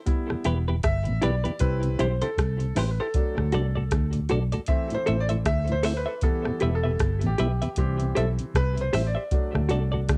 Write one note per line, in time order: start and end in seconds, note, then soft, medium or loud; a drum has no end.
0.06 0.60 G3 medium
0.06 0.60 B3 soft
0.06 0.61 E4 medium
0.06 kick loud
0.06 closed hi-hat medium
0.30 0.36 E2 medium
0.30 0.36 B2 medium
0.30 cross-stick medium
0.44 0.82 E1 medium
0.44 0.54 E3 medium
0.44 0.54 G3 medium
0.44 0.55 B3 medium
0.44 0.57 E4 medium
0.44 0.57 G4 medium
0.44 0.57 B4 medium
0.44 closed hi-hat medium
0.68 0.75 E2 medium
0.68 0.74 B2 medium
0.68 0.75 E4 soft
0.68 0.75 G4 medium
0.68 0.74 B4 medium
0.83 1.06 G1 medium
0.83 1.23 E5 loud
0.83 kick medium
0.83 cross-stick medium
0.83 closed hi-hat medium
1.05 1.22 A1 medium
1.05 1.13 E2 medium
1.05 1.13 B2 medium
1.05 closed hi-hat soft
1.22 1.45 B1 medium
1.22 1.31 E3 medium
1.22 1.31 G3 medium
1.22 1.31 B3 medium
1.22 1.34 E4 medium
1.22 1.34 G4 medium
1.22 1.34 B4 medium
1.22 1.62 D5 medium
1.22 closed hi-hat medium
1.44 1.51 E2 medium
1.44 1.51 B2 medium
1.44 1.52 E4 soft
1.44 1.51 G4 medium
1.44 1.51 B4 medium
1.44 closed hi-hat soft
1.59 1.98 C2 loud
1.59 2.14 G3 medium
1.59 2.14 C4 soft
1.59 2.15 E4 medium
1.59 2.00 B4 medium
1.59 kick medium
1.59 closed hi-hat medium
1.83 1.90 C3 medium
1.83 closed hi-hat medium
1.99 2.22 B1 medium
1.99 2.08 E3 medium
1.99 2.08 G3 medium
1.99 2.08 C4 medium
1.99 2.11 E4 medium
1.99 2.11 G4 medium
1.99 2.22 C5 medium
1.99 2.12 C5 medium
1.99 closed hi-hat medium
2.22 2.28 C3 medium
2.22 2.29 E4 medium
2.22 2.29 G4 medium
2.22 2.72 A4 medium
2.22 2.28 C5 medium
2.22 closed hi-hat medium
2.38 2.75 C2 medium
2.38 kick loud
2.38 cross-stick medium
2.38 closed hi-hat medium
2.60 2.67 C3 medium
2.60 closed hi-hat soft
2.75 2.98 A1 medium
2.75 2.84 E3 medium
2.75 2.85 G3 medium
2.75 2.85 C4 medium
2.75 2.88 E4 medium
2.75 2.89 G4 medium
2.75 2.81 B4 medium
2.75 2.89 C5 medium
2.75 cross-stick medium
2.75 open hi-hat medium
2.91 2.99 B4 medium
3.00 3.07 E4 medium
3.00 3.06 G4 medium
3.00 4.11 A4 medium
3.00 3.06 C5 medium
3.14 3.69 F#3 medium
3.14 3.69 A3 soft
3.14 3.69 D4 medium
3.14 kick loud
3.14 closed hi-hat medium
3.37 3.43 D2 medium
3.37 3.53 D2 medium
3.37 3.43 A2 medium
3.37 cross-stick medium
3.52 3.91 C2 medium
3.52 3.62 F#3 medium
3.52 3.62 A3 medium
3.52 3.62 D4 medium
3.52 3.65 F#4 medium
3.52 3.65 A4 medium
3.52 3.66 D5 medium
3.52 closed hi-hat medium
3.75 3.82 D2 medium
3.75 3.82 A2 medium
3.75 3.83 F#4 soft
3.75 3.83 A4 medium
3.75 3.82 D5 medium
3.91 4.29 D2 medium
3.91 kick loud
3.91 cross-stick loud
3.91 closed hi-hat medium
4.13 4.21 D2 medium
4.13 4.21 A2 medium
4.13 closed hi-hat medium
4.29 4.53 B1 medium
4.29 4.39 F#3 medium
4.29 4.39 A3 medium
4.29 4.40 D4 medium
4.29 4.42 F#4 medium
4.29 4.42 A4 medium
4.29 4.42 D5 medium
4.29 closed hi-hat medium
4.52 4.59 D2 medium
4.52 4.59 A2 medium
4.52 4.60 F#4 soft
4.52 4.60 A4 medium
4.52 4.59 D5 medium
4.52 closed hi-hat medium
4.66 6.18 E3 soft
4.66 6.19 A3 soft
4.66 6.19 C4 medium
4.66 4.95 E5 loud
4.66 kick loud
4.66 closed hi-hat medium
4.90 4.98 A2 medium
4.90 4.98 E3 medium
4.90 closed hi-hat soft
4.94 5.21 C5 loud
5.06 5.45 A1 medium
5.06 5.17 A3 medium
5.06 5.17 C4 medium
5.06 5.17 E4 medium
5.06 5.18 A4 medium
5.06 5.19 C5 medium
5.06 5.19 E5 medium
5.06 closed hi-hat medium
5.20 5.26 D5 loud
5.29 5.36 A2 medium
5.29 5.36 E3 medium
5.29 5.37 A4 medium
5.29 5.36 C5 medium
5.29 5.36 E5 medium
5.29 closed hi-hat medium
5.45 6.04 D2 medium
5.45 5.72 E5 loud
5.45 kick loud
5.45 cross-stick loud
5.45 closed hi-hat medium
5.68 5.75 A2 medium
5.68 5.75 E3 medium
5.68 closed hi-hat soft
5.72 5.98 C5 loud
5.83 5.93 A3 medium
5.83 5.93 C4 medium
5.83 5.94 E4 medium
5.83 5.95 A4 medium
5.83 5.96 C5 medium
5.83 5.97 E5 medium
5.83 cross-stick medium
5.83 open hi-hat medium
5.97 6.24 B4 medium
6.06 6.14 A4 medium
6.06 6.13 C5 medium
6.06 6.13 E5 medium
6.21 7.73 E3 medium
6.21 7.73 G3 soft
6.21 7.74 B3 medium
6.21 6.74 A4 medium
6.21 kick loud
6.21 closed hi-hat medium
6.45 6.52 E2 medium
6.45 6.52 B2 medium
6.45 cross-stick medium
6.60 6.99 E1 medium
6.60 6.71 G3 medium
6.60 6.71 B3 medium
6.60 6.71 E4 medium
6.60 6.73 G4 medium
6.60 6.73 B4 medium
6.60 6.74 E5 medium
6.60 closed hi-hat medium
6.75 7.28 A4 medium
6.84 6.91 E2 medium
6.84 6.91 B2 medium
6.84 6.91 G4 medium
6.84 6.91 B4 medium
6.84 6.90 E5 medium
7.00 7.22 G1 medium
7.00 kick medium
7.00 cross-stick medium
7.00 closed hi-hat medium
7.21 7.39 A1 medium
7.21 7.30 E2 medium
7.21 7.30 B2 medium
7.21 closed hi-hat soft
7.26 7.77 G4 medium
7.38 7.61 B1 medium
7.38 7.48 G3 medium
7.38 7.48 B3 medium
7.38 7.48 E4 medium
7.38 7.50 G4 medium
7.38 7.51 B4 medium
7.38 7.51 E5 medium
7.38 closed hi-hat medium
7.62 7.68 E2 medium
7.62 7.68 B2 medium
7.62 7.69 G4 medium
7.62 7.68 B4 medium
7.62 7.68 E5 medium
7.62 closed hi-hat medium
7.76 8.14 C2 loud
7.76 8.89 E3 medium
7.76 8.89 G3 soft
7.76 8.90 C4 medium
7.76 8.17 G4 medium
7.76 kick medium
7.76 closed hi-hat medium
8.00 8.07 C3 medium
8.00 closed hi-hat medium
8.15 8.38 B1 medium
8.15 8.25 G3 medium
8.15 8.25 C4 medium
8.15 8.25 E4 medium
8.15 8.27 G4 medium
8.15 8.25 A4 medium
8.15 8.28 C5 medium
8.15 8.28 E5 medium
8.15 closed hi-hat medium
8.39 8.45 C3 medium
8.39 closed hi-hat medium
8.54 8.92 C2 medium
8.54 8.82 B4 loud
8.54 kick loud
8.54 cross-stick loud
8.54 closed hi-hat medium
8.77 8.84 C3 medium
8.77 9.07 C5 medium
8.77 closed hi-hat soft
8.93 9.15 A1 medium
8.93 9.03 G3 medium
8.93 9.03 C4 medium
8.93 9.03 E4 medium
8.93 9.05 G4 medium
8.93 9.05 C5 medium
8.93 9.05 E5 medium
8.93 cross-stick medium
8.93 open hi-hat medium
9.07 10.18 D5 medium
9.15 9.23 G4 soft
9.15 9.22 C5 medium
9.15 9.22 E5 medium
9.31 10.18 F#3 soft
9.31 10.18 A3 medium
9.31 10.18 D4 medium
9.31 kick loud
9.31 closed hi-hat medium
9.55 9.70 D2 medium
9.55 9.61 D2 medium
9.55 9.61 A2 medium
9.55 cross-stick medium
9.69 10.07 C2 medium
9.69 9.79 A3 medium
9.69 9.79 D4 medium
9.69 9.81 F#4 medium
9.69 9.80 F#4 medium
9.69 9.82 A4 medium
9.69 9.82 D5 medium
9.69 closed hi-hat medium
9.92 9.99 D2 medium
9.92 9.99 A2 medium
9.92 10.00 F#4 medium
9.92 9.99 A4 medium
9.92 9.99 D5 medium
10.08 10.18 D2 medium
10.08 kick medium
10.08 cross-stick loud
10.08 closed hi-hat medium